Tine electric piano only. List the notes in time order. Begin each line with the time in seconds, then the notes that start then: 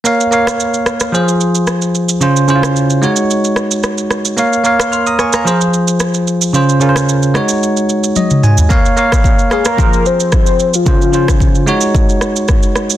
0.04 A#3 A#4 C#5 F5
0.31 A#3 A#4 C#5 F5
1.12 F3 F4 G#4 C5
2.20 C#3 C#4 F4 C5
2.48 C#3 C#4 E4 C5
2.56 F4
3.02 G#3 D#4 F#4 C#5
4.37 A#3 A#4 C#5 F5
4.64 A#3 A#4 C#5 F5
4.92 C6 F6
5.07 A#5 D#6
5.19 G#5 C#6
5.34 F5 A#5
5.45 F3 F4 G#4 C5
6.53 C#3 C#4 F4 C5
6.80 C#3 C#4 F4 A#4
6.89 C5
7.34 G#3 D#4 F#4 C#5
8.17 D#5
8.44 G#5
8.69 A#3 A#4 C#5 F5
8.96 A#3 A#4 C#5 F5
9.50 A#3 A#4 C#5 F5
9.77 F3 F4 G#4 C5
10.86 C#3 C#4 F4 C5
11.12 C#3 C#4 F4 C5
11.66 G#3 D#4 F#4 C#5